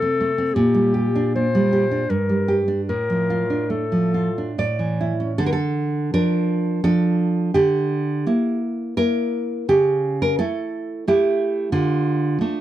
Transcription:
0.00 0.52 C3 medium
0.00 0.19 A3 soft
0.00 0.30 C4 soft
0.00 0.56 A4 medium
0.21 0.49 A3 soft
0.38 0.56 C4 soft
0.55 2.05 A#2 medium
0.55 1.34 G4 medium
0.74 1.07 G3 soft
0.94 1.27 G4 soft
1.15 1.46 D4 soft
1.35 1.65 A#3 soft
1.35 2.12 C5 medium
1.55 1.84 G3 soft
1.73 2.02 G4 soft
1.91 2.10 D4 soft
2.10 2.87 G2 medium
2.10 2.61 A#4 medium
2.29 2.61 G3 soft
2.48 2.81 G4 soft
2.68 2.88 D4 soft
2.89 4.55 A2 soft
2.89 3.72 A#4 medium
3.10 3.42 F3 soft
3.30 3.63 F4 soft
3.50 3.84 D4 soft
3.70 4.05 A3 soft
3.70 4.58 A4 soft
3.92 4.28 F3 soft
4.14 4.50 F4 soft
4.38 4.59 D4 soft
4.58 5.36 A2 soft
4.58 5.35 D5 medium
4.79 5.11 E3 soft
5.01 5.31 E4 soft
5.20 5.39 C#4 soft
5.38 6.11 D3 medium
5.38 5.46 A4 medium
5.46 5.52 A#4 medium
5.53 6.10 A4 medium
6.14 6.80 F3 soft
6.14 6.80 D4 medium
6.14 6.81 A#4 medium
6.84 7.50 F3 soft
6.84 7.50 D4 medium
6.84 7.51 A4 medium
7.54 8.24 D3 medium
7.54 8.58 G4 medium
8.26 8.93 A#3 soft
8.26 8.94 E4 soft
8.97 9.65 A#3 soft
8.97 9.65 E4 medium
8.97 9.66 A#4 medium
9.69 10.38 C#3 medium
9.69 10.20 G4 medium
10.22 10.38 A#4 medium
10.39 11.04 A3 soft
10.39 11.04 E4 soft
10.39 11.05 A4 medium
11.08 11.69 A3 medium
11.08 11.70 E4 medium
11.08 11.71 G4 medium
11.72 12.39 D3 medium
11.72 12.61 F4 medium
12.41 12.61 A3 soft
12.41 12.61 D4 medium

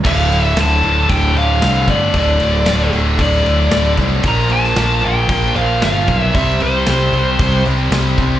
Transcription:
0.04 0.53 D1 loud
0.04 0.30 D2 loud
0.04 0.29 A2 loud
0.04 0.31 D3 loud
0.04 0.42 F5 loud
0.04 kick loud
0.04 crash loud
0.04 crash medium
0.30 0.57 D2 medium
0.30 0.56 A2 medium
0.30 0.58 D3 medium
0.30 crash medium
0.42 0.55 E5 loud
0.56 0.81 D1 medium
0.56 0.81 D2 medium
0.56 0.81 A2 medium
0.56 0.83 D3 medium
0.56 snare loud
0.56 crash medium
0.61 1.10 A5 loud
0.81 1.08 D1 medium
0.81 1.09 D2 medium
0.81 1.09 A2 medium
0.81 1.10 D3 loud
0.81 crash medium
1.09 1.34 D1 medium
1.09 1.34 D2 loud
1.09 1.35 A2 loud
1.09 1.35 D3 loud
1.09 1.34 G5 loud
1.09 kick loud
1.09 crash medium
1.35 1.60 D1 medium
1.35 1.60 D2 medium
1.35 1.61 A2 medium
1.35 1.61 D3 medium
1.35 1.90 F5 medium
1.35 crash medium
1.61 1.86 C2 medium
1.61 1.87 D2 medium
1.61 1.88 A2 medium
1.61 1.88 D3 loud
1.61 snare loud
1.61 crash medium
1.88 2.12 G1 loud
1.88 2.13 D2 medium
1.88 2.13 A2 medium
1.88 2.14 D3 loud
1.88 2.16 D5 medium
1.88 kick medium
1.88 crash medium
2.14 2.38 D1 loud
2.14 2.39 D2 loud
2.14 2.39 A2 loud
2.14 2.40 D3 loud
2.14 2.91 D5 medium
2.14 kick loud
2.14 crash medium
2.40 2.65 D1 loud
2.40 2.66 D2 medium
2.40 2.67 A2 medium
2.40 2.67 D3 medium
2.40 crash medium
2.66 2.91 D1 medium
2.66 2.91 D2 medium
2.66 2.92 A2 medium
2.66 2.92 D3 medium
2.66 snare loud
2.66 crash medium
2.92 3.17 D1 medium
2.92 3.18 D2 medium
2.92 3.19 A2 loud
2.92 3.19 D3 medium
2.92 crash medium
3.19 3.43 D1 loud
3.19 3.44 D2 loud
3.19 3.44 A2 loud
3.19 3.45 D3 loud
3.19 3.95 D5 loud
3.19 kick loud
3.19 crash medium
3.45 3.69 D1 loud
3.45 3.70 D2 medium
3.45 3.71 A2 medium
3.45 3.71 D3 medium
3.45 crash medium
3.71 3.96 D1 medium
3.71 3.96 D2 medium
3.71 3.96 A2 medium
3.71 3.97 D3 loud
3.71 snare loud
3.71 crash medium
3.97 4.22 C2 loud
3.97 4.22 D2 medium
3.97 4.23 A2 medium
3.97 4.23 D3 loud
3.97 kick medium
3.97 crash medium
4.23 4.73 A#1 medium
4.23 4.48 A#2 loud
4.23 4.49 F3 loud
4.23 4.50 A#3 loud
4.23 kick loud
4.23 crash medium
4.28 4.52 A#5 loud
4.50 4.75 A#2 medium
4.50 4.76 F3 medium
4.50 4.76 A#3 medium
4.50 5.05 A5 loud
4.50 crash medium
4.64 snare soft
4.76 5.01 A#1 loud
4.76 5.00 A#2 medium
4.76 5.01 F3 medium
4.76 5.02 A#3 medium
4.76 snare loud
4.76 crash medium
5.01 5.28 A#1 medium
5.01 5.27 A#2 medium
5.01 5.28 F3 medium
5.01 5.29 A#3 medium
5.01 crash medium
5.06 5.54 G5 loud
5.29 5.53 A#1 loud
5.29 5.53 A#2 loud
5.29 5.53 F3 loud
5.29 5.54 A#3 loud
5.29 kick loud
5.29 crash medium
5.54 5.80 A#1 loud
5.54 5.80 A#2 medium
5.54 5.81 F3 medium
5.54 5.82 A#3 loud
5.54 5.83 F5 medium
5.54 crash medium
5.81 6.06 G1 loud
5.81 6.06 A#2 medium
5.81 6.06 F3 medium
5.81 6.07 A#3 medium
5.81 6.19 F5 loud
5.81 snare loud
5.81 crash medium
6.07 6.32 B1 medium
6.07 6.32 A#2 loud
6.07 6.33 F3 medium
6.07 6.33 A#3 loud
6.07 kick medium
6.07 crash medium
6.19 6.32 E5 loud
6.34 6.59 C2 loud
6.34 6.59 C3 loud
6.34 6.60 G3 loud
6.34 6.60 C4 loud
6.34 6.59 E5 loud
6.34 kick loud
6.34 crash medium
6.60 6.85 C2 loud
6.60 6.85 C3 medium
6.60 6.86 G3 medium
6.60 6.87 C4 medium
6.60 7.62 C5 medium
6.60 crash medium
6.86 7.11 C2 medium
6.86 7.12 C3 medium
6.86 7.13 G3 medium
6.86 7.14 C4 medium
6.86 snare loud
6.86 crash medium
7.13 7.37 C2 loud
7.13 7.39 C3 medium
7.13 7.39 G3 medium
7.13 7.39 C4 loud
7.13 crash medium
7.39 7.63 C2 medium
7.39 7.65 C3 loud
7.39 7.66 G3 loud
7.39 7.66 C4 loud
7.39 kick loud
7.39 crash medium
7.66 7.90 C2 loud
7.66 7.90 C3 medium
7.66 7.92 G3 medium
7.66 7.92 C4 medium
7.66 crash medium
7.91 8.16 C2 medium
7.91 8.18 C3 medium
7.91 8.19 G3 medium
7.91 8.19 C4 medium
7.91 snare loud
7.91 crash medium
8.18 8.40 C2 loud
8.18 8.40 C3 medium
8.18 8.40 G3 medium
8.18 8.40 C4 medium
8.18 kick medium
8.18 crash medium

